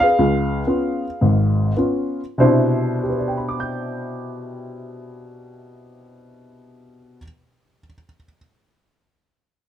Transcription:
0.00 G#4 B4 F5
0.19 C#2
0.67 B3 C#4 F4
1.21 G#1 G#2
1.77 B3 C#4 F4
2.38 B2 C3 D4 E4 C5
3.03 G4
3.10 B4
3.18 D5
3.28 G5
3.37 B5
3.48 D6
3.60 G6

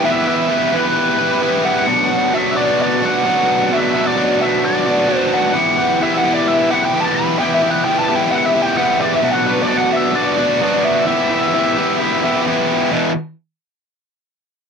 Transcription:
0.03 E3 B3 E4 G4 B4 E5
0.26 E4 G4 B4 E5
0.48 E3 B3 E4 G4 B4
0.72 E4 G4 B4
1.18 E4 G4 B4
1.41 B3 E4 G4 B4
1.65 F#5
1.87 B2 F#3 B3 D4 F#4
2.10 B3 D4 F#4
2.33 B2 F#3 B3 D4 F#4 E5
2.56 B3 D4 F#4 D5
2.82 D5
3.02 B3 D4 F#4 F#5
3.25 F#3 B3 D4 F#4
3.72 B2 F#3 B3 D4 F#4 E5
3.94 B3 D4 F#4
4.07 D5
4.16 B2 F#3 B3 D4 F#4
4.40 B3 D4 F#4 E5
4.65 D5
4.86 B3 D4 F#4
5.08 F#3 B3 D4 F#4
5.17 C5
5.34 F#5
5.54 E3 B3 E4 G4
5.78 B3 E4 G4
6.01 E3 B3 E4 G4 E5
6.17 F#5
6.24 B3 E4 G4
6.33 D5
6.48 E5
6.70 B3 E4 G4 F#5
6.85 G5
6.94 E3 B3 E4 G4
7.00 A5
7.15 B5
7.39 E3 B3 E4 G4 G5
7.54 E5
7.62 B3 E4 G4
7.70 F#5
7.84 E3 B3 E4 G4 G5
7.99 A5
8.08 B3 E4 G4
8.15 G5
8.31 F#5
8.46 E5
8.54 B3 E4 G4
8.62 G5
8.77 E3 B3 E4 G4 F#5
8.99 D5
9.15 E5
9.23 B2 F#3 B3 D4 F#4
9.31 F#5
9.45 B3 D4 F#4 B4
9.62 D5
9.68 B2 F#3 B3 D4 F#4
9.77 F#5
9.91 B3 D4 F#4 E5
10.16 D5
10.37 B3 D4 F#4
10.61 F#3 B3 D4 F#4
10.85 E5
11.06 E3 B3 E4 G4
11.30 B3 E4 G4
11.53 E3 B3 E4 G4
11.76 B3 E4 G4
12.23 B3 E4 G4
12.45 E3 B3 E4 G4
12.92 E2 B2 E3

